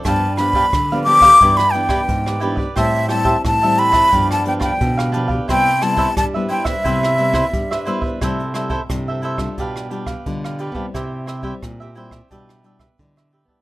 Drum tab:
HH |x-xxx-x-xxxxx-x-|xxx-xxxxxxxxx-x-|x-xxx-xxxxxxx-x-|xxxxx-xxxxxxxxx-|
SD |r-r-r--r-r-r-r--|r-r-r--r-r-r-r--|r-r-r--r-r-r-r--|r-r-r--r-r-r-r--|
BD |o--oo--oo--oo--o|o--oo--oo--oo--o|o--oo--oo--oo--o|o--oo--oo--oo--o|

HH |x-xxxxxxx-x-x---|
SD |r-r-r--r-r-r-r--|
BD |o--oo--oo--oo--o|